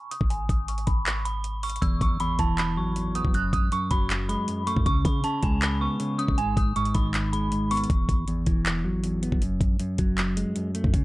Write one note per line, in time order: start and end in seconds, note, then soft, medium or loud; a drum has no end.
0.11 0.28 D#6 medium
0.11 closed hi-hat medium
0.21 0.48 G#1 loud
0.21 kick medium
0.30 0.47 G#5 medium
0.30 closed hi-hat medium
0.49 0.86 G#1 loud
0.49 0.67 D#6 medium
0.49 kick loud
0.49 closed hi-hat medium
0.68 0.86 C#6 medium
0.68 closed hi-hat medium
0.78 closed hi-hat soft
0.87 1.78 G#1 loud
0.87 1.04 B5 loud
0.87 kick medium
0.87 closed hi-hat medium
1.06 clap loud
1.06 closed hi-hat medium
1.25 1.61 B5 medium
1.25 closed hi-hat medium
1.44 closed hi-hat medium
1.63 1.80 C#6 medium
1.63 closed hi-hat medium
1.63 open hi-hat medium
1.70 closed hi-hat medium
1.76 closed hi-hat medium
1.82 2.00 E1 loud
1.82 2.19 E2 medium
1.82 1.99 E6 medium
1.82 kick loud
1.82 closed hi-hat medium
2.01 2.38 G#1 loud
2.01 2.19 C#6 medium
2.01 kick loud
2.01 closed hi-hat medium
2.20 2.95 E2 medium
2.20 2.37 B5 medium
2.20 closed hi-hat medium
2.39 2.79 E1 loud
2.39 3.34 E3 medium
2.39 2.56 A5 medium
2.39 kick medium
2.39 closed hi-hat medium
2.58 2.75 B5 medium
2.58 clap loud
2.58 closed hi-hat medium
2.77 3.22 G#1 loud
2.77 3.34 F#3 medium
2.77 3.13 C#6 medium
2.96 3.34 E2 medium
2.96 closed hi-hat medium
3.15 3.34 B3 medium
3.15 3.32 D#6 medium
3.15 closed hi-hat medium
3.25 3.52 F#1 loud
3.25 kick medium
3.34 3.71 F#2 medium
3.34 3.51 F#6 medium
3.34 closed hi-hat medium
3.53 3.71 A1 loud
3.53 3.70 D#6 medium
3.53 kick loud
3.53 closed hi-hat medium
3.72 4.47 F#2 medium
3.72 3.89 C#6 medium
3.72 closed hi-hat medium
3.91 4.37 F#1 loud
3.91 4.86 F#3 medium
3.91 4.08 B5 medium
3.91 kick medium
3.91 closed hi-hat medium
4.10 clap loud
4.10 closed hi-hat medium
4.29 4.67 G#3 medium
4.29 4.65 B5 medium
4.29 closed hi-hat medium
4.48 4.86 F#2 medium
4.48 closed hi-hat medium
4.67 4.86 A3 medium
4.67 4.84 C#6 medium
4.67 closed hi-hat medium
4.76 4.86 F#2 loud
4.76 kick medium
4.86 5.04 C#2 loud
4.86 5.23 C#3 medium
4.86 5.03 C#6 loud
4.86 kick loud
4.86 closed hi-hat medium
5.05 5.41 C#3 loud
5.05 5.22 B5 medium
5.05 kick loud
5.05 closed hi-hat medium
5.24 5.99 C#3 medium
5.24 5.41 A5 medium
5.24 closed hi-hat medium
5.43 5.89 C#2 loud
5.43 6.38 G#3 medium
5.43 5.60 G#5 medium
5.43 kick medium
5.43 closed hi-hat medium
5.62 5.79 B5 medium
5.62 clap loud
5.62 closed hi-hat medium
5.81 6.38 B3 medium
5.81 6.17 C#6 medium
6.00 6.38 C#3 medium
6.00 closed hi-hat medium
6.19 6.38 C#4 medium
6.19 6.36 D#6 medium
6.19 closed hi-hat medium
6.28 6.56 G#1 loud
6.28 kick medium
6.38 6.75 G#2 medium
6.38 6.55 G#5 medium
6.38 closed hi-hat medium
6.57 6.93 G#1 loud
6.57 6.74 D#6 medium
6.57 kick loud
6.57 closed hi-hat medium
6.76 7.51 G#2 medium
6.76 6.93 C#6 medium
6.76 closed hi-hat medium
6.85 closed hi-hat soft
6.94 7.86 G#1 loud
6.94 7.90 D#3 medium
6.94 7.12 B5 medium
6.94 kick medium
6.94 closed hi-hat medium
7.14 clap loud
7.14 closed hi-hat medium
7.33 7.90 G#3 medium
7.33 7.69 B5 medium
7.33 closed hi-hat medium
7.52 7.89 G#2 medium
7.52 closed hi-hat medium
7.71 7.90 B3 medium
7.71 7.88 C#6 medium
7.71 closed hi-hat medium
7.71 open hi-hat medium
7.77 closed hi-hat medium
7.84 closed hi-hat medium
7.90 8.08 E1 loud
7.90 kick loud
7.90 closed hi-hat medium
8.09 8.45 G#1 loud
8.09 kick loud
8.09 closed hi-hat medium
8.28 9.02 E2 medium
8.28 closed hi-hat medium
8.46 8.86 E1 loud
8.46 9.42 E3 medium
8.46 kick medium
8.46 closed hi-hat medium
8.66 clap loud
8.66 closed hi-hat medium
8.85 9.30 G#1 loud
8.85 9.42 F#3 medium
9.04 9.41 E2 medium
9.04 closed hi-hat medium
9.23 9.42 B3 medium
9.23 closed hi-hat medium
9.32 9.60 F#1 loud
9.32 kick medium
9.42 9.79 F#2 medium
9.42 closed hi-hat medium
9.61 9.79 A1 loud
9.61 kick loud
9.61 closed hi-hat medium
9.80 10.54 F#2 medium
9.80 closed hi-hat medium
9.98 10.44 F#1 loud
9.98 10.94 F#3 medium
9.98 kick medium
9.98 closed hi-hat medium
10.18 clap loud
10.18 closed hi-hat medium
10.37 10.74 G#3 medium
10.37 closed hi-hat medium
10.56 10.94 F#2 medium
10.56 closed hi-hat medium
10.75 10.94 A3 medium
10.75 closed hi-hat medium
10.84 10.93 F#2 loud
10.84 kick medium
10.94 11.04 C#2 loud
10.94 11.04 C#3 medium
10.94 kick loud
10.94 closed hi-hat medium